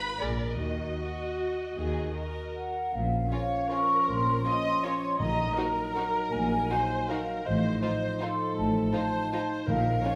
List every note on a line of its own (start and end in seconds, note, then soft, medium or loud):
0.00 0.20 B4 medium
0.00 0.18 B5 medium
0.20 0.52 A#1 soft
0.20 0.52 A#2 soft
0.20 0.29 G#4 soft
0.20 0.58 A#4 soft
0.20 0.29 A#4 soft
0.20 0.59 D5 medium
0.59 0.91 D#2 soft
0.59 0.91 D#3 soft
0.59 2.75 F#4 soft
0.59 2.52 D#5 soft
0.98 1.72 F#4 soft
1.76 2.08 D#2 soft
1.76 2.08 D#3 soft
1.76 2.15 G#4 soft
2.15 2.92 A#4 soft
2.55 2.91 F#5 soft
2.93 3.25 A#1 medium
2.93 3.25 A#2 soft
2.93 5.16 F3 soft
2.93 5.16 C#4 soft
2.93 3.71 F5 medium
3.31 3.39 C#4 soft
3.31 3.40 F4 soft
3.31 3.39 A#4 soft
3.31 3.68 C#5 soft
3.70 3.79 C#4 soft
3.70 3.79 F4 soft
3.70 4.44 A#4 soft
3.70 3.79 A#4 soft
3.70 4.07 C#6 medium
4.07 4.38 A#1 medium
4.07 4.38 A#2 soft
4.07 5.19 C6 medium
4.44 4.52 C#4 soft
4.44 4.52 F4 soft
4.44 4.54 A#4 soft
4.44 4.83 D#5 medium
4.84 4.92 C#4 soft
4.84 4.92 F4 soft
4.84 4.92 A#4 soft
4.84 5.20 C#5 soft
5.20 5.50 A#1 soft
5.20 5.50 A#2 medium
5.20 5.73 A#2 medium
5.20 7.41 F#3 soft
5.20 7.44 D#4 soft
5.20 5.56 D#5 medium
5.20 6.30 A#5 medium
5.57 5.65 D#4 soft
5.57 5.65 F#4 soft
5.57 6.70 A#4 medium
5.57 5.65 C5 soft
5.96 6.04 D#4 soft
5.96 6.04 F#4 soft
5.96 6.04 C5 soft
6.31 6.63 A#1 soft
6.31 6.63 A#2 soft
6.31 7.08 G#5 medium
6.70 6.78 D#4 soft
6.70 6.79 F#4 soft
6.70 7.09 C5 medium
6.70 6.79 C5 soft
7.08 7.18 D#4 soft
7.08 7.17 F#4 soft
7.08 7.46 A#4 soft
7.08 7.17 C5 soft
7.08 7.44 F5 medium
7.45 7.75 A1 medium
7.45 7.75 A2 medium
7.45 9.51 F3 soft
7.45 10.15 D#4 medium
7.45 7.81 C5 medium
7.45 8.20 D#5 medium
7.82 7.90 D#4 soft
7.82 7.90 F4 soft
7.82 8.19 C5 medium
7.82 7.90 C5 soft
8.20 8.28 D#4 soft
8.20 8.28 F4 soft
8.20 8.94 A4 soft
8.20 8.28 C5 soft
8.20 8.56 C6 medium
8.56 8.87 A1 soft
8.56 8.86 A2 medium
8.56 9.38 A5 medium
8.93 9.01 D#4 soft
8.93 9.01 F4 soft
8.93 9.31 C5 medium
8.93 9.02 C5 soft
9.32 9.40 D#4 soft
9.32 9.40 F4 soft
9.32 9.67 C5 medium
9.32 9.40 C5 soft
9.67 9.98 A#1 medium
9.67 9.98 A#2 medium
9.67 10.15 A#2 medium
9.67 10.15 F3 medium
9.67 10.04 A#4 medium
9.67 10.15 F5 medium
10.04 10.12 C#4 soft
10.04 10.13 F4 soft
10.04 10.13 A#4 soft
10.04 10.15 C#5 medium